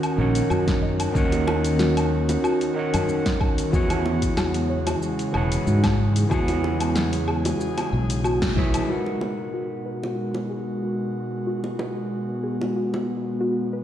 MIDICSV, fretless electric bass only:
0, 0, Header, 1, 2, 480
1, 0, Start_track
1, 0, Key_signature, 5, "minor"
1, 0, Tempo, 645161
1, 856, Time_signature, 4, 2, 24, 8
1, 10295, End_track
2, 0, Start_track
2, 0, Title_t, "Fretless electric bass"
2, 0, Program_c, 0, 35
2, 133, Note_on_c, 0, 34, 83
2, 297, Note_off_c, 0, 34, 0
2, 375, Note_on_c, 0, 42, 83
2, 794, Note_off_c, 0, 42, 0
2, 857, Note_on_c, 0, 39, 97
2, 1754, Note_off_c, 0, 39, 0
2, 2187, Note_on_c, 0, 42, 87
2, 2258, Note_off_c, 0, 42, 0
2, 2776, Note_on_c, 0, 40, 98
2, 3674, Note_off_c, 0, 40, 0
2, 3979, Note_on_c, 0, 28, 75
2, 4140, Note_off_c, 0, 28, 0
2, 4217, Note_on_c, 0, 44, 85
2, 4635, Note_off_c, 0, 44, 0
2, 4697, Note_on_c, 0, 40, 95
2, 5594, Note_off_c, 0, 40, 0
2, 5897, Note_on_c, 0, 35, 84
2, 6554, Note_off_c, 0, 35, 0
2, 10295, End_track
0, 0, End_of_file